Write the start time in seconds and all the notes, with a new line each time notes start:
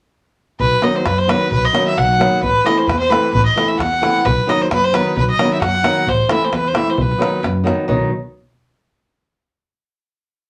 0.60 B1 B4, davul low
0.82 D#3 F#3 B3 D#4 D#5, davul high
0.95 C5, davul high
1.05 F#2 B4, davul high
1.18 C5, davul high
1.28 D#3 F#3 B3 D#4 B4, davul high
1.41 davul high
1.51 B1 B4, davul low
1.65 D#5
1.73 D#3 F#3 B3 D#4, davul high
1.88 E5, davul high
1.97 B1 F#5, davul high
2.11 davul high
2.19 D#3 F#3 B3 D#4, davul high
2.33 davul high
2.42 A1 B4, davul low
2.64 E3 A3 C4 E4 D#5, davul high
2.77 C5, davul high
2.87 E2 B4, davul high
3.00 C5, davul high
3.09 E3 A3 C4 E4 B4, davul high
3.25 davul high
3.33 A1 B4, davul low
3.46 D#5
3.56 E3 A3 C4 E4, davul high
3.68 E5, davul high
3.79 E2 F#5, davul high
3.93 davul high
4.01 E3 A3 C4 E4, davul high
4.16 davul high
4.25 B1 B4, davul low
4.47 D#3 F#3 B3 D#4 D#5, davul high
4.61 C5, davul high
4.71 F#2 B4, davul high
4.84 C5, davul high
4.93 D#3 F#3 B3 D#4 B4, davul high
5.06 davul high
5.17 B1 B4, davul low
5.31 D#5
5.39 D#3 F#3 B3 D#4, davul high
5.52 E5, davul high
5.61 F#2 F#5, davul high
5.75 davul high
5.83 D#3 F#3 B3 D#4, davul high
5.97 davul high
6.07 A1 C5, davul low
6.29 E3 A3 C4 E4 E5, davul high
6.42 C5, davul high
6.52 E2 B4, davul high
6.65 C5, davul high
6.73 E3 A3 C4 E4 E5, davul high
6.88 C5, davul high
6.97 B1 B4, davul low
7.12 davul high
7.18 D#3 F#3 B3 D#4, davul high
7.34 davul high
7.43 F#2, davul high
7.64 D#3 F#3 B3 D#4, davul high
7.88 B1 D#3 F#3 B3 D#4, davul low